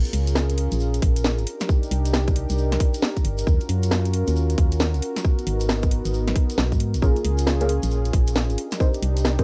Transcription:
0.00 1.45 C#4 medium
0.00 1.45 F4 medium
0.00 1.45 G#4 medium
0.00 9.44 A#4 medium
0.05 closed hi-hat soft
0.05 shaker soft
0.13 0.68 C#2 loud
0.13 open hi-hat loud
0.27 closed hi-hat medium
0.27 shaker medium
0.35 snare loud
0.35 shaker medium
0.50 closed hi-hat medium
0.50 shaker soft
0.58 open hi-hat medium
0.72 1.00 A#1 medium
0.72 closed hi-hat medium
0.72 shaker medium
0.80 shaker medium
0.94 closed hi-hat medium
0.94 shaker soft
1.02 1.40 A#1 medium
1.02 kick loud
1.02 open hi-hat loud
1.16 closed hi-hat medium
1.16 shaker medium
1.24 snare loud
1.24 shaker medium
1.38 1.45 G#1 medium
1.38 closed hi-hat soft
1.38 shaker soft
1.47 3.45 D4 medium
1.47 3.45 D#4 medium
1.47 3.45 G4 medium
1.47 open hi-hat loud
1.61 snare medium
1.61 closed hi-hat medium
1.61 shaker medium
1.69 kick loud
1.69 shaker medium
1.83 closed hi-hat soft
1.83 shaker soft
1.91 2.46 C2 medium
1.91 open hi-hat loud
2.05 closed hi-hat medium
2.05 shaker medium
2.13 snare loud
2.13 shaker medium
2.28 kick loud
2.28 closed hi-hat soft
2.28 shaker soft
2.36 open hi-hat medium
2.50 2.78 C2 medium
2.50 closed hi-hat medium
2.50 shaker medium
2.58 shaker medium
2.72 snare medium
2.72 closed hi-hat soft
2.72 shaker soft
2.80 kick loud
2.80 open hi-hat loud
2.94 closed hi-hat medium
2.94 shaker medium
3.02 snare loud
3.02 shaker medium
3.17 kick medium
3.17 closed hi-hat soft
3.17 shaker soft
3.25 3.44 G1 medium
3.25 open hi-hat medium
3.38 closed hi-hat medium
3.38 shaker medium
3.47 3.59 D#2 loud
3.47 5.23 C#4 medium
3.47 5.23 F4 medium
3.47 6.99 F#4 medium
3.47 kick loud
3.47 shaker medium
3.60 closed hi-hat soft
3.60 shaker soft
3.69 4.24 F#2 medium
3.69 open hi-hat loud
3.83 closed hi-hat medium
3.83 shaker medium
3.91 snare loud
3.91 shaker medium
4.05 closed hi-hat soft
4.05 shaker soft
4.13 open hi-hat medium
4.27 4.56 D#2 medium
4.27 closed hi-hat medium
4.27 shaker medium
4.36 shaker medium
4.50 closed hi-hat soft
4.50 shaker soft
4.58 4.96 D#2 medium
4.58 kick loud
4.58 open hi-hat loud
4.72 closed hi-hat medium
4.72 shaker medium
4.80 snare loud
4.80 shaker medium
4.94 5.01 C#2 medium
4.94 closed hi-hat soft
4.94 shaker soft
5.02 open hi-hat medium
5.16 snare medium
5.16 closed hi-hat medium
5.16 shaker medium
5.25 7.01 B3 medium
5.25 7.01 D#4 medium
5.25 kick loud
5.39 closed hi-hat soft
5.39 shaker soft
5.47 6.02 G#1 medium
5.47 open hi-hat medium
5.60 closed hi-hat medium
5.60 shaker medium
5.69 snare loud
5.69 shaker medium
5.83 kick loud
5.83 closed hi-hat soft
5.83 shaker soft
5.91 open hi-hat medium
6.05 6.34 G#1 medium
6.05 closed hi-hat medium
6.05 shaker medium
6.14 shaker medium
6.27 snare medium
6.27 closed hi-hat soft
6.27 shaker soft
6.36 kick loud
6.36 open hi-hat medium
6.50 closed hi-hat medium
6.50 shaker medium
6.58 6.74 B1 medium
6.58 snare loud
6.58 shaker medium
6.72 6.96 G#2 medium
6.72 kick medium
6.72 closed hi-hat soft
6.72 shaker soft
6.80 open hi-hat medium
6.94 7.01 B1 medium
6.94 closed hi-hat medium
6.94 shaker medium
7.02 7.14 A#1 loud
7.02 7.17 A#3 medium
7.02 7.17 C#4 medium
7.02 8.56 C#4 medium
7.02 7.17 F4 medium
7.02 8.56 F4 medium
7.02 7.17 G#4 medium
7.02 8.56 G#4 medium
7.02 7.17 A#4 loud
7.02 kick loud
7.02 shaker medium
7.16 closed hi-hat soft
7.16 shaker soft
7.25 7.79 C#2 medium
7.25 open hi-hat loud
7.38 closed hi-hat medium
7.38 shaker medium
7.47 snare loud
7.47 shaker medium
7.60 7.66 A#3 medium
7.60 7.66 C#4 medium
7.60 7.66 F4 medium
7.60 7.66 G#4 medium
7.60 7.66 A#4 medium
7.60 closed hi-hat medium
7.60 shaker soft
7.69 open hi-hat medium
7.83 8.11 A#1 medium
7.83 closed hi-hat medium
7.83 shaker medium
7.91 shaker medium
8.05 closed hi-hat medium
8.05 shaker soft
8.13 8.51 A#1 medium
8.13 kick loud
8.13 open hi-hat loud
8.27 closed hi-hat medium
8.27 shaker medium
8.35 snare loud
8.35 shaker medium
8.50 8.57 G#1 medium
8.50 closed hi-hat soft
8.50 shaker soft
8.58 9.44 D4 medium
8.58 9.44 D#4 medium
8.58 9.44 G4 medium
8.58 open hi-hat medium
8.72 snare medium
8.72 closed hi-hat medium
8.72 shaker medium
8.80 8.89 C4 medium
8.80 8.89 D#4 medium
8.80 8.89 G4 medium
8.80 8.89 A#4 medium
8.80 8.89 C5 medium
8.80 kick loud
8.80 shaker medium
8.94 closed hi-hat soft
8.94 shaker soft
9.02 9.44 C2 medium
9.02 open hi-hat loud
9.17 closed hi-hat medium
9.17 shaker medium
9.25 snare loud
9.25 shaker medium
9.38 9.44 C4 medium
9.38 9.44 D#4 medium
9.38 9.44 G4 medium
9.38 9.44 A#4 medium
9.38 9.44 C5 loud
9.38 kick loud
9.38 closed hi-hat medium
9.38 shaker soft

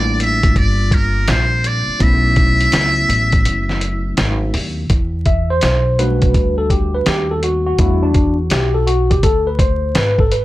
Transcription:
0.00 0.52 A1 medium
0.00 1.96 G3 medium
0.00 1.96 A#3 medium
0.00 1.96 C4 medium
0.00 1.97 D4 medium
0.00 1.97 F4 medium
0.00 0.21 D5 loud
0.20 0.59 E5 loud
0.20 closed hi-hat medium
0.43 kick medium
0.43 closed hi-hat medium
0.56 1.24 G1 loud
0.56 0.96 D5 loud
0.56 kick loud
0.56 closed hi-hat loud
0.91 1.32 A#4 loud
0.91 kick loud
0.91 closed hi-hat medium
1.28 1.85 A#1 medium
1.28 1.69 C5 medium
1.28 snare loud
1.28 closed hi-hat medium
1.64 2.04 D5 loud
1.64 closed hi-hat medium
1.88 muted upright bass stroke soft
1.99 2.69 B1 loud
1.99 4.85 F#3 medium
1.99 4.85 A3 medium
1.99 4.86 B3 medium
1.99 4.86 C#4 medium
1.99 4.87 E4 medium
1.99 4.18 E5 loud
1.99 kick loud
1.99 closed hi-hat medium
2.36 kick medium
2.36 closed hi-hat medium
2.61 closed hi-hat medium
2.72 3.07 C#2 medium
2.72 snare loud
2.72 closed hi-hat medium
3.09 3.43 A1 medium
3.09 closed hi-hat medium
3.32 kick medium
3.32 closed hi-hat medium
3.45 4.14 F#1 medium
3.45 closed hi-hat loud
3.69 snare soft
3.81 closed hi-hat medium
4.17 4.52 G#1 medium
4.17 snare loud
4.17 closed hi-hat medium
4.54 4.88 D#2 medium
4.54 open hi-hat medium
4.90 5.59 E2 medium
4.90 kick loud
4.90 closed hi-hat medium
5.26 5.50 E5 medium
5.26 kick medium
5.26 closed hi-hat medium
5.50 6.00 C5 medium
5.61 6.31 B1 medium
5.61 snare loud
5.61 closed hi-hat medium
5.98 7.78 G3 medium
5.98 7.78 A3 soft
5.98 7.79 D4 medium
5.98 7.43 F#4 medium
5.98 6.54 B4 medium
5.98 closed hi-hat medium
6.22 kick medium
6.22 closed hi-hat medium
6.34 7.03 D2 medium
6.34 kick loud
6.34 closed hi-hat medium
6.58 6.71 A4 medium
6.70 6.95 G4 medium
6.70 kick medium
6.70 closed hi-hat medium
6.95 7.06 B4 medium
7.06 7.75 D#2 medium
7.06 7.31 G4 medium
7.06 snare loud
7.06 closed hi-hat medium
7.31 7.42 A4 medium
7.43 7.65 F#4 medium
7.43 closed hi-hat medium
7.67 7.78 F#4 medium
7.78 8.47 E2 loud
7.78 8.12 G3 medium
7.78 8.12 A3 medium
7.78 8.01 D4 medium
7.78 8.04 E4 medium
7.78 8.86 F#4 medium
7.78 kick loud
7.78 closed hi-hat medium
8.03 8.36 D4 medium
8.14 kick medium
8.14 closed hi-hat medium
8.50 9.20 B1 medium
8.50 8.76 G4 medium
8.50 snare loud
8.50 closed hi-hat medium
8.74 8.87 A4 medium
8.87 9.11 F#4 medium
8.87 closed hi-hat medium
9.11 9.24 G4 medium
9.11 kick medium
9.11 closed hi-hat medium
9.23 9.92 D2 medium
9.23 9.48 A4 medium
9.23 kick medium
9.23 closed hi-hat medium
9.47 9.59 B4 medium
9.59 9.97 C5 medium
9.59 kick medium
9.59 closed hi-hat medium
9.95 10.45 G#1 medium
9.95 10.20 B4 medium
9.95 snare loud
9.95 closed hi-hat medium
10.19 10.32 A4 medium
10.19 kick medium
10.32 10.45 B4 medium
10.32 closed hi-hat medium

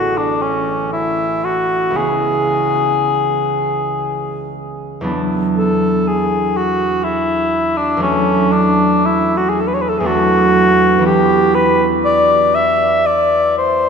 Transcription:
0.00 1.98 A1 soft
0.00 1.91 E3 soft
0.00 1.99 A3 soft
0.00 1.92 B3 soft
0.00 1.94 C#4 soft
0.00 0.19 F#4 medium
0.17 0.44 D4 medium
0.42 0.92 C#4 soft
0.93 1.46 E4 medium
1.44 1.98 F#4 medium
1.90 5.08 C#2 soft
1.90 5.09 E3 soft
1.90 5.02 B3 soft
1.95 5.85 C#4 soft
1.95 5.05 E4 soft
1.95 4.57 G#4 medium
5.01 7.96 E2 soft
5.01 7.98 F#3 soft
5.01 8.06 B3 soft
5.01 8.00 D4 soft
5.06 8.08 E4 soft
5.57 6.09 A4 medium
6.07 6.58 G#4 medium
6.57 7.05 F#4 medium
7.04 7.78 E4 medium
7.77 8.02 D4 medium
7.97 9.99 E2 soft
7.97 10.01 F#3 soft
7.97 10.02 A3 soft
8.01 8.54 C#4 medium
8.01 10.04 D4 soft
8.01 10.05 F#4 soft
8.53 9.07 D4 medium
9.05 9.39 E4 medium
9.37 9.51 F#4 medium
9.49 9.62 G#4 medium
9.60 9.69 A4 medium
9.67 9.75 B4 medium
9.74 9.83 C#5 medium
9.81 9.90 B4 medium
9.89 10.01 A4 medium
9.99 10.97 E2 soft
9.99 13.89 F#3 soft
9.99 10.08 G#4 medium
10.04 11.08 A3 soft
10.04 11.09 D4 soft
10.04 11.03 F#4 soft
10.04 11.05 F#4 medium
10.99 13.89 E2 soft
10.99 13.89 E3 soft
10.99 13.89 B3 soft
11.03 13.89 E4 soft
11.03 13.89 F#4 soft
11.03 11.56 G4 medium
11.55 11.88 B4 medium
12.05 12.56 D5 medium
12.55 13.08 E5 medium
13.06 13.58 D5 medium
13.58 13.89 C5 medium

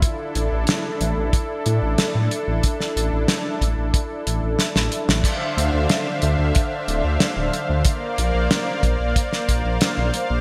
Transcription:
0.00 5.21 D4 medium
0.00 5.21 E4 medium
0.00 5.21 A4 medium
0.00 kick loud
0.00 closed hi-hat medium
0.35 0.49 A1 loud
0.35 closed hi-hat medium
0.52 0.65 A1 medium
0.67 snare loud
0.67 closed hi-hat loud
1.01 1.14 A1 loud
1.01 closed hi-hat medium
1.17 1.30 A1 medium
1.33 kick loud
1.33 closed hi-hat medium
1.66 1.79 A2 medium
1.66 closed hi-hat medium
1.82 1.96 A1 medium
1.98 snare loud
1.98 closed hi-hat loud
2.15 2.28 A2 medium
2.31 closed hi-hat medium
2.48 2.61 A1 medium
2.63 kick loud
2.63 closed hi-hat medium
2.80 snare soft
2.96 3.10 A1 loud
2.96 closed hi-hat medium
3.13 3.26 A1 medium
3.28 snare loud
3.28 closed hi-hat loud
3.61 3.75 A1 loud
3.61 kick medium
3.61 closed hi-hat medium
3.78 3.91 A1 medium
3.94 kick loud
3.94 closed hi-hat loud
4.27 4.40 A1 loud
4.27 closed hi-hat medium
4.43 4.57 A1 medium
4.59 snare medium
4.59 closed hi-hat loud
4.76 4.89 A1 medium
4.76 snare medium
4.92 closed hi-hat medium
5.08 5.22 A1 medium
5.08 snare medium
5.24 7.83 D3 medium
5.24 7.83 D4 medium
5.24 10.41 C5 medium
5.24 7.83 E5 medium
5.24 10.41 F5 loud
5.24 kick loud
5.24 closed hi-hat loud
5.24 crash loud
5.57 5.71 D2 loud
5.57 closed hi-hat medium
5.74 5.87 D2 medium
5.89 snare loud
5.89 closed hi-hat loud
6.22 6.36 D2 loud
6.22 closed hi-hat medium
6.39 6.52 D2 medium
6.55 kick loud
6.55 closed hi-hat loud
6.88 7.01 D1 loud
6.88 closed hi-hat medium
7.04 7.17 D2 medium
7.20 snare loud
7.20 closed hi-hat loud
7.37 7.50 D1 medium
7.53 closed hi-hat medium
7.69 7.83 D2 medium
7.85 10.41 A#3 medium
7.85 10.41 A#4 medium
7.85 10.41 D5 medium
7.85 kick loud
7.85 closed hi-hat loud
8.18 8.32 A#1 loud
8.18 closed hi-hat medium
8.34 8.48 A#1 medium
8.51 snare loud
8.51 closed hi-hat loud
8.83 8.97 A#1 medium
8.83 kick loud
8.83 closed hi-hat medium
9.00 9.13 A#1 medium
9.16 kick loud
9.16 closed hi-hat loud
9.33 snare soft
9.49 9.62 A#1 loud
9.49 kick medium
9.49 closed hi-hat medium
9.65 9.78 A#1 medium
9.81 snare loud
9.81 closed hi-hat loud
9.98 10.11 A#1 medium
10.14 closed hi-hat medium
10.30 10.41 A#1 medium

